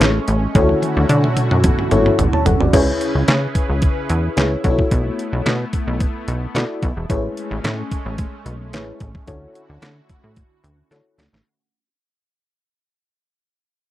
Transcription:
Already playing: analog synth pad G#3 A3 C#4, fm electric piano E4 G#4 B4 C#5
0.00 analog synth bass A1, snare, clap, closed hi-hat
0.28 analog synth bass A1, closed hi-hat
0.55 analog synth bass D2, analog synth pad D3 A3 E4 F#4, fm electric piano E4 F#4 A4 C#5, kick, closed hi-hat, high tom
0.69 high tom
0.82 closed hi-hat, high tom
0.97 analog synth bass D2, high tom
1.09 analog synth bass D3, closed hi-hat, mid tom
1.24 mid tom
1.37 closed hi-hat, mid tom
1.51 analog synth bass F#2, mid tom
1.64 kick, closed hi-hat, mid tom
1.79 mid tom
1.91 analog synth bass G#1, fm electric piano E4 F#4 A4 C#5, closed hi-hat, mid tom
2.06 mid tom
2.19 analog synth bass A1, closed hi-hat, floor tom
2.33 fm electric piano C#5 A5, floor tom
2.46 analog synth bass F#1, fm electric piano A4 F#5, closed hi-hat, floor tom
2.60 analog synth bass G#1, fm electric piano F#4 D5, floor tom
2.73 analog synth bass C#2, analog synth pad C#3 C#4 E4 G#4 B4, fm electric piano E4 G#4 B4 C#5, kick, closed hi-hat, crash
3.01 closed hi-hat
3.15 analog synth bass C#2
3.28 analog synth bass C#3, snare, clap, closed hi-hat
3.55 kick, closed hi-hat
3.70 analog synth bass C#2
3.82 kick, closed hi-hat
4.09 analog synth bass E2, closed hi-hat
4.36 analog synth bass C#2, fm electric piano E4 G#4 B4 C#5, snare, clap, closed hi-hat
4.64 analog synth bass B1, analog synth pad A3 B3, fm electric piano D4 F#4 A4 C#5, kick, closed hi-hat
4.70 fm electric piano E4
4.79 kick
4.91 analog synth bass B1, kick, closed hi-hat
5.19 closed hi-hat
5.33 analog synth bass B1
5.46 analog synth bass B2, snare, clap, closed hi-hat
5.73 kick, closed hi-hat
5.87 analog synth bass B1
6.00 kick, closed hi-hat
6.28 analog synth bass B1, closed hi-hat
6.55 analog synth bass B2, fm electric piano E4 F#4 A4 D5, snare, clap, closed hi-hat
6.82 analog synth bass B1, kick, closed hi-hat
6.97 analog synth bass E1
7.10 analog synth bass A1, analog synth pad G#3 A3 C#4, fm electric piano E4 G#4 B4 C#5, kick, closed hi-hat
7.37 closed hi-hat
7.51 analog synth bass A1
7.64 analog synth bass A2, snare, clap, closed hi-hat
7.91 kick, closed hi-hat
8.06 analog synth bass A1
8.18 kick, closed hi-hat
8.46 analog synth bass B1, closed hi-hat
8.73 analog synth bass A1, fm electric piano E4 G#4 B4 C#5, snare, clap, closed hi-hat
9.00 analog synth bass A1, kick, closed hi-hat
9.15 kick
9.27 analog synth bass D2, analog synth pad D3 E4 F#4, fm electric piano E4 F#4 A4 C#5, kick, closed hi-hat
9.55 closed hi-hat
9.69 analog synth bass D2
9.82 analog synth bass D3, snare, clap, closed hi-hat
10.09 kick, closed hi-hat
10.24 analog synth bass A2
10.36 kick, closed hi-hat
10.64 analog synth bass D2, closed hi-hat
10.91 analog synth bass D3, fm electric piano E4 F#4 A4 C#5, snare, closed hi-hat
11.18 analog synth bass D2, snare, open hi-hat
11.33 analog synth bass A1, snare

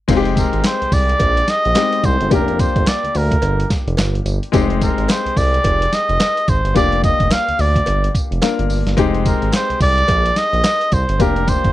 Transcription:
0.08 analog synth bass F1, grand piano G#3 C4 D#4 F4, kick, closed hi-hat, crash, tambourine, cowbell
0.17 grand piano G4
0.25 closed hi-hat
0.37 muted trumpet A#4, kick, closed hi-hat, tambourine
0.53 analog synth bass G#1, closed hi-hat
0.64 muted trumpet C5, snare, clap, closed hi-hat, tambourine, cowbell
0.82 analog synth bass C2, closed hi-hat
0.92 analog synth bass C2, muted trumpet D5, kick, open hi-hat, tambourine
1.09 closed hi-hat
1.20 analog synth bass A#1, kick, closed hi-hat, cowbell
1.37 closed hi-hat
1.48 muted trumpet D#5, snare, closed hi-hat, tambourine
1.65 analog synth bass A#1, closed hi-hat
1.75 grand piano G#3 C4 D#4 G4, snare, clap, closed hi-hat, tambourine, cowbell
1.93 closed hi-hat
2.04 analog synth bass C2, muted trumpet C5, kick, closed hi-hat, tambourine
2.21 analog synth bass G1, closed hi-hat
2.30 analog synth bass F1, grand piano A#3 D4 F4 G4, muted trumpet A#4, kick, closed hi-hat, tambourine, cowbell
2.48 closed hi-hat
2.59 muted trumpet C5, kick, closed hi-hat, tambourine
2.76 analog synth bass G1, kick, closed hi-hat
2.86 muted trumpet D5, snare, clap, closed hi-hat, tambourine, cowbell
3.04 analog synth bass D2, closed hi-hat
3.15 analog synth bass D2, muted trumpet A#4, open hi-hat, tambourine
3.31 kick, closed hi-hat
3.42 analog synth bass G1, closed hi-hat, cowbell
3.60 closed hi-hat
3.70 kick, snare, closed hi-hat, tambourine
3.87 analog synth bass F1, closed hi-hat
3.97 analog synth bass G1, snare, clap, closed hi-hat, tambourine, cowbell
4.15 closed hi-hat
4.26 analog synth bass G1, closed hi-hat, tambourine
4.43 closed hi-hat
4.52 analog synth bass F1, grand piano G#3 C4 D#4 G4, kick, closed hi-hat, tambourine, cowbell
4.70 closed hi-hat
4.81 muted trumpet A#4, kick, closed hi-hat, tambourine
4.98 analog synth bass G#1, closed hi-hat
5.08 muted trumpet C5, snare, clap, closed hi-hat, tambourine, cowbell
5.26 analog synth bass C2, closed hi-hat
5.37 analog synth bass C2, muted trumpet D5, kick, open hi-hat, tambourine
5.54 closed hi-hat
5.64 analog synth bass F1, kick, closed hi-hat, cowbell
5.82 closed hi-hat
5.93 muted trumpet D#5, snare, closed hi-hat, tambourine
6.09 analog synth bass F1, closed hi-hat
6.20 snare, clap, closed hi-hat, tambourine, cowbell
6.37 closed hi-hat
6.48 analog synth bass G#1, muted trumpet C5, kick, closed hi-hat, tambourine
6.65 analog synth bass G1, closed hi-hat
6.74 analog synth bass F1, grand piano A#3 D4 F4 G4, muted trumpet D5, kick, closed hi-hat, tambourine, cowbell
6.92 closed hi-hat
7.04 muted trumpet D#5, kick, closed hi-hat, tambourine
7.20 analog synth bass F1, kick, closed hi-hat
7.30 muted trumpet F5, snare, clap, closed hi-hat, tambourine, cowbell
7.48 analog synth bass D2, closed hi-hat
7.59 analog synth bass D2, muted trumpet D5, open hi-hat, tambourine
7.76 kick, closed hi-hat
7.86 analog synth bass G1, closed hi-hat, cowbell
8.04 closed hi-hat
8.15 kick, closed hi-hat, tambourine
8.31 analog synth bass F1, closed hi-hat
8.42 grand piano A#3 D4 F4 A#4, snare, clap, closed hi-hat, tambourine, cowbell
8.59 analog synth bass G1, closed hi-hat
8.70 analog synth bass G1, open hi-hat, tambourine
8.86 analog synth bass G1, snare, closed hi-hat
8.97 analog synth bass F1, grand piano G#3 C4 D#4 G4, kick, closed hi-hat, tambourine, cowbell
9.14 closed hi-hat
9.26 muted trumpet A#4, kick, closed hi-hat, tambourine
9.42 analog synth bass G#1, closed hi-hat
9.52 muted trumpet C5, snare, clap, closed hi-hat, tambourine, cowbell
9.70 analog synth bass C2, closed hi-hat
9.80 analog synth bass C2, muted trumpet D5, kick, open hi-hat, tambourine
9.98 closed hi-hat
10.08 analog synth bass A#1, kick, closed hi-hat, cowbell
10.26 closed hi-hat
10.36 muted trumpet D#5, snare, closed hi-hat, tambourine
10.53 analog synth bass A#1, closed hi-hat
10.64 snare, clap, closed hi-hat, tambourine, cowbell
10.81 closed hi-hat
10.92 analog synth bass C2, muted trumpet C5, kick, closed hi-hat, tambourine
11.09 analog synth bass G1, closed hi-hat
11.19 analog synth bass F1, grand piano A#3 D4 F4 G4, muted trumpet A#4, kick, closed hi-hat, tambourine, cowbell
11.36 closed hi-hat
11.48 muted trumpet C5, kick, closed hi-hat, tambourine
11.64 analog synth bass G1, kick, closed hi-hat

